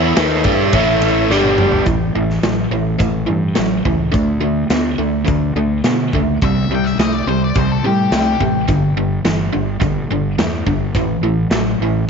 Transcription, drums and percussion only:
0.17 snare, ride
0.44 kick, ride
0.73 kick, ride
1.02 snare, ride
1.31 snare
1.44 mid tom
1.58 mid tom
1.72 floor tom
1.86 kick, closed hi-hat
2.30 snare
2.43 snare, closed hi-hat
3.00 kick, closed hi-hat
3.55 snare, closed hi-hat
3.85 kick
4.14 kick, closed hi-hat
4.70 snare, closed hi-hat
5.27 kick, closed hi-hat
5.84 snare, closed hi-hat
6.13 kick
6.42 kick, closed hi-hat
6.86 snare
6.99 snare, closed hi-hat
7.55 kick, closed hi-hat
8.12 snare, closed hi-hat
8.41 kick
8.68 kick, closed hi-hat
9.25 snare, closed hi-hat
9.82 kick, closed hi-hat
10.39 snare, closed hi-hat
10.67 kick
10.95 kick, closed hi-hat
11.51 snare, closed hi-hat

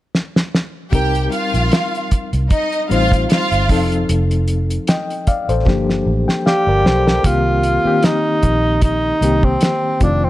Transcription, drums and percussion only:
0.15 snare
0.36 snare
0.55 snare
0.93 kick, closed hi-hat
1.15 closed hi-hat
1.32 closed hi-hat
1.54 closed hi-hat
1.71 snare, closed hi-hat
1.95 closed hi-hat
2.11 kick, closed hi-hat
2.33 closed hi-hat
2.50 kick, closed hi-hat
2.72 closed hi-hat
2.91 closed hi-hat
3.12 kick, closed hi-hat
3.30 snare, closed hi-hat
3.52 closed hi-hat
3.69 kick, open hi-hat
3.92 closed hi-hat
4.09 closed hi-hat
4.31 closed hi-hat
4.48 closed hi-hat
4.70 closed hi-hat
4.87 snare, closed hi-hat
5.10 closed hi-hat
5.27 kick, closed hi-hat
5.49 closed hi-hat
5.66 kick, snare
5.90 snare
6.29 snare
6.47 snare
6.86 snare
7.07 snare
7.24 kick, closed hi-hat
7.63 closed hi-hat
8.03 snare, closed hi-hat
8.43 kick, closed hi-hat
8.81 kick, closed hi-hat
9.22 closed hi-hat
9.43 kick
9.61 snare, closed hi-hat
10.01 kick, closed hi-hat

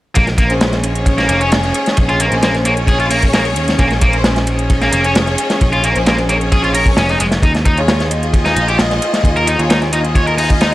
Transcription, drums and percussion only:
0.15 kick, closed hi-hat, ride
0.27 snare, closed hi-hat
0.38 kick, closed hi-hat, ride
0.50 closed hi-hat
0.61 snare, closed hi-hat, ride
0.73 snare, closed hi-hat
0.84 closed hi-hat, ride
0.95 closed hi-hat
1.06 kick, closed hi-hat, ride
1.18 snare, closed hi-hat
1.29 closed hi-hat, ride
1.41 closed hi-hat
1.52 snare, closed hi-hat, ride
1.64 snare, closed hi-hat
1.74 closed hi-hat, ride
1.86 snare, closed hi-hat
1.97 kick, closed hi-hat, ride
2.09 closed hi-hat
2.20 closed hi-hat, ride
2.32 closed hi-hat
2.43 snare, closed hi-hat, ride
2.55 snare, closed hi-hat
2.65 closed hi-hat, ride
2.77 closed hi-hat
2.87 kick, closed hi-hat, ride
3.00 closed hi-hat
3.11 closed hi-hat, open hi-hat
3.22 kick, closed hi-hat
3.33 snare, closed hi-hat, ride
3.45 closed hi-hat
3.56 closed hi-hat, ride
3.68 snare, closed hi-hat
3.79 kick, closed hi-hat, ride
3.91 snare, closed hi-hat
4.01 kick, closed hi-hat, ride
4.13 closed hi-hat
4.24 snare, closed hi-hat, ride
4.36 snare, closed hi-hat
4.47 closed hi-hat, ride
4.59 closed hi-hat
4.70 kick, closed hi-hat, ride
4.82 snare, closed hi-hat
4.93 closed hi-hat, ride
5.04 closed hi-hat
5.15 snare, closed hi-hat, ride
5.27 snare, closed hi-hat
5.38 closed hi-hat, ride
5.50 snare, closed hi-hat
5.61 kick, closed hi-hat, ride
5.73 closed hi-hat
5.84 closed hi-hat, ride
5.96 closed hi-hat
6.06 snare, closed hi-hat, ride
6.18 snare, closed hi-hat
6.29 closed hi-hat, ride
6.41 closed hi-hat
6.52 kick, closed hi-hat, ride
6.64 closed hi-hat
6.75 closed hi-hat, open hi-hat
6.86 kick, closed hi-hat
6.97 snare, closed hi-hat, ride
7.09 closed hi-hat
7.20 closed hi-hat, ride
7.32 snare, closed hi-hat
7.43 kick, closed hi-hat, ride
7.55 snare, closed hi-hat
7.65 kick, closed hi-hat, ride
7.78 closed hi-hat
7.88 snare, closed hi-hat, ride
8.00 snare, closed hi-hat
8.11 closed hi-hat, ride
8.23 closed hi-hat
8.34 kick, closed hi-hat, ride
8.46 snare, closed hi-hat
8.56 closed hi-hat, ride
8.68 closed hi-hat
8.79 snare, closed hi-hat, ride
8.91 snare, closed hi-hat
9.02 closed hi-hat, ride
9.14 snare, closed hi-hat
9.24 kick, closed hi-hat, ride
9.37 closed hi-hat
9.47 closed hi-hat, ride
9.59 closed hi-hat
9.70 snare, closed hi-hat, ride
9.82 snare, closed hi-hat
9.93 closed hi-hat, ride
10.05 closed hi-hat
10.15 kick, closed hi-hat, ride
10.27 closed hi-hat
10.38 closed hi-hat, open hi-hat
10.50 kick, closed hi-hat
10.61 snare, closed hi-hat, ride

